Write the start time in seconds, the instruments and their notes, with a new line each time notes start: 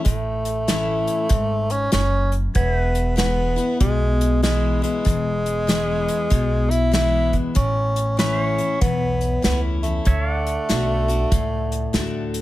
Already playing: pedal steel guitar C#5 E5
0.04 upright bass A1, steel-string acoustic guitar A2, tenor saxophone A3, kick, closed hi-hat
0.45 closed hi-hat
0.68 steel-string acoustic guitar E3 A3 C#4 E4, snare, closed hi-hat
1.07 closed hi-hat
1.29 upright bass G#1, steel-string acoustic guitar G#2, kick, closed hi-hat
1.70 tenor saxophone C#4, closed hi-hat
1.92 upright bass F#1, steel-string acoustic guitar F#2, tenor saxophone C#4, snare, closed hi-hat
2.32 closed hi-hat
2.55 upright bass E1, steel-string acoustic guitar E2, tenor saxophone B3, pedal steel guitar C#5 E5, kick, closed hi-hat
2.81 pedal steel guitar B4
2.95 closed hi-hat
3.16 steel-string acoustic guitar E3 G#3 B3 E4, tenor saxophone B3, snare, closed hi-hat
3.56 steel-string acoustic guitar B3 E4, closed hi-hat
3.80 upright bass B1, steel-string acoustic guitar B2, tenor saxophone G#3, kick, closed hi-hat
4.21 closed hi-hat
4.43 steel-string acoustic guitar E3 G#3 B3 E4, tenor saxophone G#3, snare, closed hi-hat
4.82 tenor saxophone G#3, steel-string acoustic guitar B3 E4, closed hi-hat
5.05 upright bass E1, steel-string acoustic guitar E2, kick, closed hi-hat
5.46 closed hi-hat
5.67 steel-string acoustic guitar E3 G#3 B3 E4, snare, closed hi-hat
6.08 closed hi-hat
6.30 upright bass B1, steel-string acoustic guitar B2, kick, closed hi-hat
6.70 tenor saxophone E4, closed hi-hat
6.92 steel-string acoustic guitar E3 G#3 B3 E4, tenor saxophone E4, snare, closed hi-hat
7.33 kick, closed hi-hat
7.55 upright bass A1, steel-string acoustic guitar A2, tenor saxophone C#4, kick, closed hi-hat
7.96 closed hi-hat
8.17 steel-string acoustic guitar E3 A3 C#4 E4, tenor saxophone C#4, pedal steel guitar B4 E5, snare, closed hi-hat
8.45 pedal steel guitar C#5
8.58 steel-string acoustic guitar C#4 E4, closed hi-hat
8.81 upright bass B1, steel-string acoustic guitar E2, tenor saxophone B3, kick, closed hi-hat
9.21 closed hi-hat
9.42 upright bass C#2, steel-string acoustic guitar E3 A3 C#4 E4, tenor saxophone B3, snare, closed hi-hat
9.83 tenor saxophone A3, steel-string acoustic guitar C#4 E4, closed hi-hat
10.05 upright bass D2, steel-string acoustic guitar D3, pedal steel guitar C#5 E5, kick, closed hi-hat
10.27 pedal steel guitar D5
10.33 pedal steel guitar F#5
10.47 closed hi-hat
10.69 upright bass B1, steel-string acoustic guitar D3 A3 D4 F#4, snare, closed hi-hat
11.08 steel-string acoustic guitar D4 F#4, closed hi-hat
11.31 upright bass C#2, steel-string acoustic guitar A2, kick, closed hi-hat
11.72 closed hi-hat
11.93 upright bass D2, steel-string acoustic guitar D3 A3 D4 F#4, snare, closed hi-hat
12.34 closed hi-hat